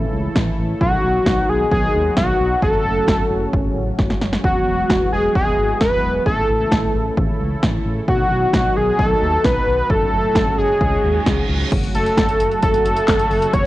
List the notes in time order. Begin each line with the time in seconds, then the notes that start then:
Already playing: C#3 E3 A3 E4 A4
0.13 C#2
0.35 A1, kick, snare
0.58 A1
0.81 B1 B2 D#3 F#3 D#4 F#4, kick
1.03 B1
1.26 B1, kick, snare
1.49 B1 G#4
1.72 B1 G#4, kick
1.94 D#2
2.17 B1 F#4, kick, snare
2.40 B1
2.62 F#1 A2 C#3 C#4 A4, kick
2.85 F#1
3.08 F#1, kick, snare
3.31 F#1
3.54 F#1, kick
3.76 A1
3.99 F#1, kick, snare
4.10 snare
4.22 F#1, snare
4.33 snare
4.44 E1 E3 G#3 B3 F#4, kick
4.67 E1
4.90 E1, kick, snare
5.13 E1 G#4
5.35 E1 G#4, kick
5.58 G#1
5.81 E1 B4, kick, snare
6.03 E1
6.26 A1 C#3 A3 E4 A4, kick
6.49 A1
6.72 A1, kick, snare
6.94 A1
7.17 A1, kick
7.40 C#2
7.63 A1, kick, snare
7.85 A1
8.08 B1 B2 D#3 F#3 D#4 F#4, kick
8.31 B1
8.54 B1, kick, snare
8.76 B1 G#4
8.99 B1 A4, kick
9.22 D#2
9.44 B1 B4, kick, snare
9.67 B1
9.90 F#1 A2 C#3 C#4 F#4 A4, kick
10.13 F#1
10.35 F#1, kick, snare
10.58 F#1 G#4
10.81 C#2 G#2, kick, reverse cymbal
11.04 D#2
11.26 C#2, kick, snare
11.49 C#2
11.72 F#1 C#3 F#3 A3 F#4, kick, closed hi-hat, crash
11.83 closed hi-hat
11.94 F#1 A4, closed hi-hat
12.06 closed hi-hat
12.17 F#1, kick, snare, closed hi-hat
12.29 closed hi-hat
12.40 F#1, closed hi-hat
12.51 closed hi-hat
12.62 F#1 A4, kick, closed hi-hat
12.74 closed hi-hat
12.85 F#1, closed hi-hat
12.96 closed hi-hat
13.08 F#1, kick, snare, clap, closed hi-hat
13.19 closed hi-hat
13.31 F#1, open hi-hat
13.42 closed hi-hat
13.53 F#1 C#5, kick, closed hi-hat